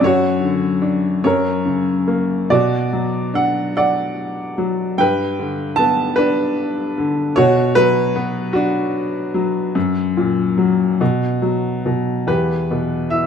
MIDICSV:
0, 0, Header, 1, 2, 480
1, 0, Start_track
1, 0, Key_signature, 2, "minor"
1, 0, Tempo, 831025
1, 12, Time_signature, 6, 3, 24, 8
1, 2412, Tempo, 796813
1, 5772, Tempo, 839161
1, 7782, End_track
2, 0, Start_track
2, 0, Title_t, "Upright piano"
2, 0, Program_c, 0, 0
2, 0, Control_c, 0, 64, 127
2, 5, Note_on_c, 0, 42, 57
2, 19, Control_c, 0, 64, 0
2, 23, Note_on_c, 0, 73, 85
2, 37, Note_on_c, 0, 66, 62
2, 118, Control_c, 0, 64, 127
2, 233, Note_on_c, 0, 50, 44
2, 472, Note_on_c, 0, 62, 48
2, 696, Note_off_c, 0, 42, 0
2, 701, Note_off_c, 0, 50, 0
2, 708, Note_off_c, 0, 73, 0
2, 710, Note_off_c, 0, 62, 0
2, 711, Note_off_c, 0, 66, 0
2, 717, Note_on_c, 0, 42, 54
2, 717, Note_on_c, 0, 73, 72
2, 730, Control_c, 0, 64, 0
2, 731, Note_on_c, 0, 70, 48
2, 819, Control_c, 0, 64, 127
2, 956, Note_on_c, 0, 49, 44
2, 1199, Note_on_c, 0, 58, 42
2, 1427, Note_off_c, 0, 42, 0
2, 1432, Note_off_c, 0, 49, 0
2, 1432, Note_off_c, 0, 70, 0
2, 1439, Note_off_c, 0, 58, 0
2, 1445, Note_on_c, 0, 47, 51
2, 1446, Note_on_c, 0, 74, 75
2, 1449, Note_on_c, 0, 66, 56
2, 1458, Control_c, 0, 64, 0
2, 1470, Note_off_c, 0, 73, 0
2, 1566, Control_c, 0, 64, 127
2, 1691, Note_on_c, 0, 54, 43
2, 1928, Note_on_c, 0, 62, 44
2, 1937, Note_on_c, 0, 78, 77
2, 1947, Note_off_c, 0, 74, 0
2, 2151, Note_off_c, 0, 66, 0
2, 2168, Note_off_c, 0, 78, 0
2, 2176, Note_on_c, 0, 78, 74
2, 2179, Note_on_c, 0, 74, 54
2, 2633, Note_off_c, 0, 54, 0
2, 2655, Note_on_c, 0, 54, 46
2, 2874, Note_off_c, 0, 47, 0
2, 2874, Note_off_c, 0, 62, 0
2, 2878, Note_off_c, 0, 78, 0
2, 2880, Note_off_c, 0, 74, 0
2, 2892, Note_off_c, 0, 54, 0
2, 2897, Note_on_c, 0, 43, 54
2, 2897, Note_on_c, 0, 79, 88
2, 2908, Control_c, 0, 64, 0
2, 2911, Note_on_c, 0, 71, 64
2, 3025, Control_c, 0, 64, 127
2, 3146, Note_on_c, 0, 50, 47
2, 3366, Note_on_c, 0, 81, 86
2, 3385, Note_on_c, 0, 59, 50
2, 3395, Note_off_c, 0, 79, 0
2, 3595, Note_off_c, 0, 81, 0
2, 3597, Note_off_c, 0, 71, 0
2, 3606, Note_on_c, 0, 71, 79
2, 3619, Note_on_c, 0, 62, 62
2, 4072, Note_off_c, 0, 50, 0
2, 4100, Note_on_c, 0, 50, 49
2, 4305, Note_off_c, 0, 43, 0
2, 4307, Note_off_c, 0, 62, 0
2, 4309, Note_off_c, 0, 59, 0
2, 4327, Note_off_c, 0, 50, 0
2, 4329, Note_on_c, 0, 73, 96
2, 4337, Note_on_c, 0, 47, 63
2, 4339, Note_on_c, 0, 66, 67
2, 4340, Control_c, 0, 64, 0
2, 4346, Note_off_c, 0, 71, 0
2, 4431, Control_c, 0, 64, 127
2, 4567, Note_on_c, 0, 71, 99
2, 4571, Note_on_c, 0, 54, 51
2, 4575, Note_off_c, 0, 73, 0
2, 4811, Note_on_c, 0, 59, 55
2, 5022, Note_off_c, 0, 71, 0
2, 5026, Note_off_c, 0, 66, 0
2, 5035, Note_on_c, 0, 66, 74
2, 5049, Note_on_c, 0, 62, 59
2, 5507, Note_off_c, 0, 54, 0
2, 5524, Note_on_c, 0, 54, 52
2, 5752, Note_off_c, 0, 59, 0
2, 5753, Note_off_c, 0, 47, 0
2, 5764, Note_off_c, 0, 54, 0
2, 5772, Note_on_c, 0, 42, 63
2, 5780, Control_c, 0, 64, 0
2, 5869, Control_c, 0, 64, 127
2, 6011, Note_on_c, 0, 46, 50
2, 6242, Note_on_c, 0, 54, 50
2, 6465, Note_off_c, 0, 42, 0
2, 6475, Note_off_c, 0, 46, 0
2, 6478, Note_off_c, 0, 54, 0
2, 6489, Note_on_c, 0, 47, 56
2, 6496, Control_c, 0, 64, 0
2, 6600, Control_c, 0, 64, 127
2, 6702, Note_off_c, 0, 66, 0
2, 6709, Note_off_c, 0, 62, 0
2, 6726, Note_on_c, 0, 54, 43
2, 6966, Note_off_c, 0, 47, 0
2, 6974, Note_on_c, 0, 47, 42
2, 7197, Note_off_c, 0, 54, 0
2, 7207, Note_off_c, 0, 47, 0
2, 7212, Note_on_c, 0, 40, 44
2, 7215, Note_on_c, 0, 67, 46
2, 7215, Note_on_c, 0, 71, 61
2, 7222, Control_c, 0, 64, 0
2, 7335, Control_c, 0, 64, 127
2, 7462, Note_on_c, 0, 47, 36
2, 7688, Note_on_c, 0, 76, 65
2, 7691, Note_on_c, 0, 52, 40
2, 7709, Note_off_c, 0, 71, 0
2, 7782, Note_off_c, 0, 40, 0
2, 7782, Note_off_c, 0, 47, 0
2, 7782, Note_off_c, 0, 52, 0
2, 7782, Note_off_c, 0, 67, 0
2, 7782, Note_off_c, 0, 76, 0
2, 7782, End_track
0, 0, End_of_file